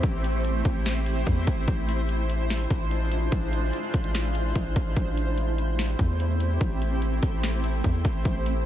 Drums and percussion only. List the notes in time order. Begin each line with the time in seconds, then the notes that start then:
0.03 kick, closed hi-hat
0.24 closed hi-hat
0.45 closed hi-hat
0.65 kick, closed hi-hat
0.86 snare, closed hi-hat
1.06 closed hi-hat
1.27 kick, closed hi-hat
1.47 kick, closed hi-hat
1.68 kick, closed hi-hat
1.89 closed hi-hat
2.09 closed hi-hat
2.30 closed hi-hat
2.50 snare, closed hi-hat
2.70 kick, closed hi-hat
2.91 closed hi-hat
3.12 closed hi-hat
3.32 kick, closed hi-hat
3.53 closed hi-hat
3.73 closed hi-hat
3.94 kick, closed hi-hat
4.04 closed hi-hat
4.15 snare, closed hi-hat
4.35 closed hi-hat
4.55 kick, closed hi-hat
4.76 kick, closed hi-hat
4.97 kick, closed hi-hat
5.17 closed hi-hat
5.38 closed hi-hat
5.58 closed hi-hat
5.79 snare, closed hi-hat
5.99 kick, closed hi-hat
6.20 closed hi-hat
6.40 closed hi-hat
6.61 kick, closed hi-hat
6.82 closed hi-hat
7.02 closed hi-hat
7.23 kick, closed hi-hat
7.43 snare, closed hi-hat
7.64 closed hi-hat
7.84 kick, closed hi-hat
8.05 kick, closed hi-hat
8.25 kick, closed hi-hat
8.46 closed hi-hat